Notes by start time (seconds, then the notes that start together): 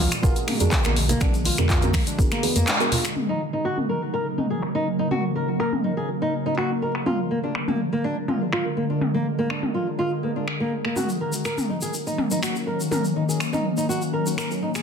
Already playing: A#2 D3 G#3 F#4
0.00 F4
0.12 finger snap, closed hi-hat, shaker
0.22 G#1 B3 D4 F4 F#4 G#4 A#4, kick, low conga, shaker
0.36 closed hi-hat, shaker
0.47 A#3, finger snap, open hi-hat, mid tom
0.60 F2 B3 D4 F#4 G#4 A#4, closed hi-hat, shaker
0.71 kick, clap, shaker
0.83 A#1 A#3 B3 D4 F#4 G#4 A#4, finger snap, closed hi-hat, high conga, shaker
0.96 open hi-hat, high conga
1.09 A#3, closed hi-hat, low conga, shaker
1.21 A#1 B3 D4 F#4 G#4 A#4, finger snap, kick, mid tom, high conga, low conga, shaker
1.34 closed hi-hat, shaker
1.45 F4, open hi-hat, high conga
1.57 F2 B3 D4 F#4 G#4 A#4, finger snap, closed hi-hat, low conga, shaker
1.69 F4, kick, clap, shaker
1.82 B3 D4 F#4 G#4 A#4, closed hi-hat, mid tom, shaker
1.93 A#1 A#3, finger snap, kick, open hi-hat, high conga
2.07 D4, closed hi-hat, shaker
2.18 G#1 B3 D4 F#4 G#4 A#4, kick, shaker
2.31 A#3, finger snap, closed hi-hat, shaker
2.43 B3 D4 F#4 G#4 B4, open hi-hat, high conga
2.56 F2 A#3, closed hi-hat, shaker
2.67 D4, finger snap, clap, shaker
2.80 B3 D4 F#4 G#4 A#4, closed hi-hat, shaker
2.92 F4, open hi-hat, low conga
3.05 finger snap, shaker
3.16 C#3 F#3 A#3 C#4 D#4 A#4, mid tom
3.29 D#4
3.53 A#3 C#4 D#4 F#4 A#4
3.65 F#4, finger snap
3.78 A#3 C#4 D#4 F#4 A#4, mid tom
3.89 A#4
4.14 C#4 D#4 F#4 A#4
4.38 D#4, mid tom
4.50 A#3 C#4 D#4 F#4 G#4 A#4
4.62 finger snap
4.75 A#3 C#4 D#4 F#4 A#4
4.99 D#4
5.11 A#3 C#4 D#4 F#4 A#4 F5, mid tom
5.36 A#4
5.49 A#3 C#4 D#4 F#4 A#4
5.60 A#4, finger snap
5.73 A#3 C#4 D#4 F#4, mid tom
5.84 D#4
5.97 G#4
6.08 A#3 C#4 D#4 F#4 A#4
6.22 D#4
6.46 A#3 C#4 D#4 F#4 A#4
6.58 F#4, finger snap
6.70 A#3 C#4 D#4 F#4 A#4
6.82 A#4
6.95 finger snap
7.06 D3 F#3 G#3 B3 D4 F4 F#4 G#4 A#4, mid tom
7.31 A#3
7.44 B3 D4 F#4 G#4 A#4
7.55 finger snap
7.68 A#3 B3 D4 F#4 G#4 A#4, mid tom
7.93 A#3
8.04 B3 D4 F#4 G#4 A#4
8.28 F4, mid tom
8.41 B3 D4 F#4 G#4 A#4
8.53 F4, finger snap
8.65 B3 D4 F#4 G#4 A#4
8.77 A#3
8.90 D4
9.01 B3 D4 F#4 G#4 A#4, mid tom
9.14 A#3
9.38 A#3 B3 D4 F#4 G#4 A#4
9.50 D4, finger snap
9.62 B3 D4 F#4 G#4 A#4, mid tom
9.74 F4
9.99 B3 D4 F4 G#4 A#4
10.23 A#3 B3 D4 F#4 G#4 B4
10.36 D4
10.48 finger snap
10.60 A#3 B3 D4 F#4 G#4 A#4
10.85 A#3, finger snap
10.96 D#3 F#3 A#3 C#4 D#4 F#4 A#4, mid tom, shaker
11.09 shaker
11.21 A#4
11.33 A#3 C#4 D#4 F#4 A#4, shaker
11.45 A#4, finger snap, shaker
11.58 A#3 C#4 D#4 F#4 A#4, mid tom, shaker
11.70 D#4
11.81 G#4, shaker
11.94 A#3 C#4 D#4 F#4 A#4, shaker
12.07 D#4, shaker
12.18 mid tom
12.31 A#3 C#4 D#4 F#4 A#4, shaker
12.43 F#4, finger snap, shaker
12.55 A#3 C#4 D#4 F#4 A#4, shaker
12.67 A#4
12.80 shaker
12.91 A#3 C#4 D#4 F#4 A#4, mid tom, shaker
13.05 shaker
13.16 D#4
13.29 A#3 C#4 D#4 F#4 G#4 A#4, shaker
13.40 finger snap, shaker
13.53 A#3 C#4 D#4 F#4 A#4, mid tom, shaker
13.77 D#4, shaker
13.89 A#3 C#4 D#4 F#4 A#4, shaker
14.02 shaker
14.13 A#4
14.26 A#3 C#4 D#4 F#4 A#4, shaker
14.38 A#4, finger snap, shaker
14.51 A#3 C#4 D#4 F#4 A#4, shaker
14.62 D#4
14.75 G#4, finger snap, shaker